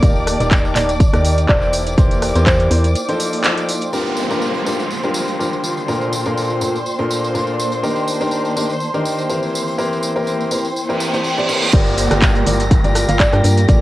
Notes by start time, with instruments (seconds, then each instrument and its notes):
Already playing: ambient pad A#3 F4 D5 A5, string section D5 D6
0.03 fm bass D#1, grand piano D#3 D#4 G4 A#4 D5, ambient pad D#4, kick, closed hi-hat, tambourine
0.16 tambourine
0.27 cross-stick, open hi-hat, tambourine
0.40 fm bass D#1, grand piano D#3 D#4 G4 A#4 D5, closed hi-hat, tambourine
0.51 kick, clap, closed hi-hat, tambourine
0.65 tambourine
0.76 fm bass D#1, grand piano D#3 D#4 G4 A#4 D5, clap, open hi-hat, tambourine
0.80 ambient pad G5
0.89 closed hi-hat, tambourine
1.00 kick, closed hi-hat, tambourine
1.13 fm bass D#2, grand piano D#3 D#4 G4 A#4 D5, cross-stick, closed hi-hat, tambourine
1.25 open hi-hat, tambourine
1.38 closed hi-hat, tambourine
1.49 fm bass E1, grand piano E3 E4 G4 A#4 C5, kalimba D5, kick, clap, closed hi-hat, tambourine
1.62 tambourine
1.73 open hi-hat, tambourine
1.87 closed hi-hat, tambourine
1.98 fm bass E1, grand piano E3 E4 G4 A#4 C5, kick, closed hi-hat, tambourine
2.11 closed hi-hat, tambourine
2.22 cross-stick, open hi-hat, tambourine
2.29 ambient pad C5
2.35 fm bass E2, grand piano E3 E4 G4 A#4 C5, closed hi-hat, tambourine
2.46 kalimba C5, kick, clap, closed hi-hat, tambourine
2.59 closed hi-hat, tambourine
2.71 fm bass E2, grand piano E4 G4 A#4 C5, open hi-hat, tambourine
2.84 closed hi-hat, tambourine
2.95 closed hi-hat, tambourine
3.09 grand piano F3 D#4 F4 A4 C5, closed hi-hat, tambourine
3.20 open hi-hat, tambourine
3.33 open hi-hat, tambourine
3.44 grand piano F3 D#4 F4 A4 C5, clap, closed hi-hat, tambourine
3.57 closed hi-hat, tambourine
3.69 open hi-hat, tambourine
3.81 closed hi-hat, tambourine
3.93 grand piano G3 D4 F4 G4 A#4, ambient pad F4, string section C5 C6, tambourine, downlifter
4.06 tambourine
4.14 ambient pad A#3, tambourine
4.19 ambient pad D5
4.31 grand piano G3 D4 F4 G4 A#4, tambourine
4.42 tambourine
4.54 tambourine
4.66 grand piano G3 D4 F4 G4 A#4, tambourine
4.80 ambient pad G5, tambourine
4.91 tambourine
5.03 grand piano G3 D4 F4 G4 A#4, tambourine
5.14 tambourine
5.28 tambourine
5.39 grand piano G3 D4 F4 G4 A#4, tambourine
5.53 tambourine
5.64 tambourine
5.77 tambourine
5.88 grand piano A#2 D4 F4 A4 A#4, tambourine
6.01 tambourine
6.13 tambourine
6.25 grand piano A#2 D4 F4 A4 A#4, tambourine
6.37 tambourine
6.50 tambourine
6.61 grand piano A#2 D4 F4 A4 A#4, tambourine
6.76 ambient pad A5, tambourine
6.86 tambourine
6.99 grand piano A#2 D4 F4 A4 A#4, tambourine
7.11 tambourine
7.24 tambourine
7.34 grand piano A#2 D4 F4 A4 A#4, tambourine
7.47 tambourine
7.59 tambourine
7.72 tambourine
7.83 grand piano D#3 D4 D#4 G4 A#4, ambient pad D#3, tambourine
7.96 tambourine
8.08 tambourine
8.21 grand piano D#3 D4 D#4 G4 A#4, tambourine
8.31 tambourine
8.45 tambourine
8.56 grand piano D#3 D4 D#4 G4 A#4, tambourine
8.60 ambient pad G5
8.70 tambourine
8.80 tambourine
8.94 grand piano D#3 D4 D#4 G4 A#4, tambourine
9.05 tambourine
9.18 tambourine
9.29 grand piano E3 C4 E4 G4 A#4, tambourine
9.43 tambourine
9.54 ambient pad E4, tambourine
9.68 tambourine
9.78 grand piano E3 C4 E4 G4 A#4, tambourine
9.93 tambourine
9.98 ambient pad C5
10.03 tambourine
10.16 grand piano E3 C4 E4 G4 A#4, tambourine
10.27 tambourine
10.41 tambourine
10.51 grand piano E3 C4 E4 G4 A#4, tambourine
10.65 tambourine
10.76 tambourine, reverse cymbal
10.89 grand piano E3 C4 E4 G4 A#4, tambourine
11.00 tambourine
11.13 grand piano E3 C4 E4 G4 C5, tambourine
11.24 tambourine
11.38 grand piano E3 C4 E4 G4 D5, tambourine
11.49 grand piano E3 C4 E4 G4 A#4, tambourine
11.62 tambourine
11.73 fm bass G1, grand piano G3 F4 G4 A#4 D5, ambient pad F4, string section G4 A#6, kick, closed hi-hat, crash, tambourine, downlifter, shaker
11.86 tambourine, shaker
11.98 open hi-hat, tambourine, shaker
12.11 fm bass G1, grand piano G3 F4 G4 A#4 D5, cross-stick, closed hi-hat, tambourine, shaker
12.22 ambient pad D5, kick, clap, closed hi-hat, tambourine, shaker
12.35 tambourine, shaker
12.47 fm bass G1, grand piano G3 F4 G4 A#4 D5, open hi-hat, tambourine, shaker
12.60 closed hi-hat, tambourine, shaker
12.71 kick, closed hi-hat, tambourine, shaker
12.84 fm bass G1, grand piano G3 F4 G4 A#4 D5, closed hi-hat, tambourine, shaker
12.95 cross-stick, open hi-hat, tambourine, shaker
13.09 fm bass G1, grand piano G3 F4 G4 A#4 F5, closed hi-hat, tambourine, shaker
13.20 kalimba D5, kick, clap, closed hi-hat, tambourine, shaker
13.32 fm bass G2, grand piano G3 F4 G4 A#4 G5, cross-stick, tambourine, shaker
13.44 fm bass G2, grand piano A#3 F4 G4 A#4 D5, open hi-hat, tambourine, shaker
13.57 closed hi-hat, tambourine, shaker
13.68 fm bass A#1, grand piano A#3 F4 A4 A#4 D5, kick, closed hi-hat, tambourine, shaker